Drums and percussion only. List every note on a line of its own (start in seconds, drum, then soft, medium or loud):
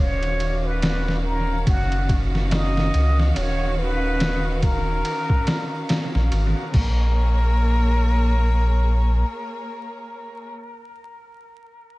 0.23 ride soft
0.40 ride medium
0.82 snare loud
0.82 ride medium
1.08 snare soft
1.67 kick loud
1.67 ride medium
1.92 ride soft
2.09 kick medium
2.09 ride medium
2.35 snare soft
2.51 snare loud
2.51 ride medium
2.77 snare medium
2.94 ride medium
3.19 snare medium
3.36 ride medium
4.20 snare loud
4.20 ride medium
4.62 kick medium
4.62 ride medium
5.05 ride medium
5.30 kick medium
5.47 snare loud
5.47 ride medium
5.89 snare loud
5.89 ride medium
6.15 snare medium
6.32 ride medium
6.74 kick loud
6.74 crash medium